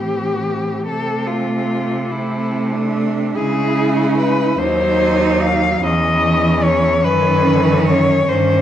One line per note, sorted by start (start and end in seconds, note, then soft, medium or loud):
0.00 0.87 A2 medium
0.00 0.87 E3 medium
0.00 0.82 C4 medium
0.00 0.85 G4 medium
0.85 3.36 C3 medium
0.85 2.10 A3 medium
0.85 2.08 C4 medium
0.85 1.29 A4 loud
1.27 2.12 F4 loud
2.09 3.36 A3 medium
2.09 2.73 C4 medium
2.09 2.94 E4 medium
2.72 3.35 D4 medium
3.34 4.57 C#3 medium
3.34 4.57 G#3 medium
3.34 4.60 E4 medium
3.34 4.13 G#4 loud
4.17 4.60 B4 loud
4.57 5.79 D#2 loud
4.57 5.83 F#3 loud
4.57 5.81 D#4 loud
4.57 5.43 C5 loud
5.41 5.84 F5 loud
5.81 7.04 E2 loud
5.81 7.05 E3 loud
5.81 7.02 C#4 loud
5.81 6.65 D#5 loud
6.63 7.06 C#5 loud
7.03 8.29 F#2 loud
7.03 8.27 D#3 loud
7.03 8.25 C#4 loud
7.03 7.87 B4 loud
7.87 8.30 C#5 loud
8.27 8.62 G2 loud
8.27 8.62 D#3 loud
8.27 8.62 C#4 loud
8.27 8.62 C5 loud